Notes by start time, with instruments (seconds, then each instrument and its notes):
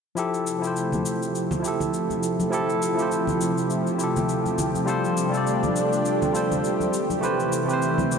0.15 analog synth pad C3 F3 A3 E4 G4, tine electric piano F3 E4 G4 A4, cabasa
0.34 cabasa
0.47 cabasa
0.59 tine electric piano F3 E4
0.64 tine electric piano G4 C5, cabasa
0.76 cabasa
0.92 high conga, low conga, cabasa
1.06 cabasa
1.23 cabasa
1.35 cabasa
1.51 low conga, cabasa
1.60 tine electric piano F3 E4
1.65 tine electric piano G4 A4, cabasa
1.80 low conga, cabasa
1.94 cabasa
2.10 high conga, cabasa
2.23 cabasa
2.40 high conga, cabasa
2.50 tine electric piano F3 E4 G4 A4, cabasa
2.70 cabasa
2.82 cabasa
2.94 tine electric piano F3 E4
2.99 tine electric piano G4 C5, cabasa
3.12 cabasa
3.27 high conga, low conga, cabasa
3.41 cabasa
3.58 cabasa
3.70 cabasa
3.87 cabasa
3.96 tine electric piano F3 E4
4.00 tine electric piano G4 A4, cabasa
4.16 low conga, cabasa
4.29 cabasa
4.46 high conga, cabasa
4.58 low conga, cabasa
4.75 high conga, cabasa
4.85 tine electric piano G3 F4 A4 C5, analog synth pad A3 D4, cabasa
5.05 cabasa
5.17 cabasa
5.29 tine electric piano G3 F4
5.34 tine electric piano A4 D5, cabasa
5.47 cabasa
5.63 high conga, low conga, cabasa
5.76 cabasa
5.93 cabasa
6.05 cabasa
6.22 low conga, cabasa
6.32 tine electric piano G3 F4 A4 C5, cabasa
6.51 low conga, cabasa
6.64 cabasa
6.80 high conga, cabasa
6.93 analog synth pad C3 E3 C4, cabasa
7.10 high conga, cabasa
7.21 tine electric piano A3 G4 B4 C5, cabasa
7.40 cabasa
7.53 cabasa
7.65 tine electric piano A3 G4
7.69 tine electric piano B4 C5, cabasa
7.82 cabasa
7.98 high conga, low conga, cabasa
8.12 cabasa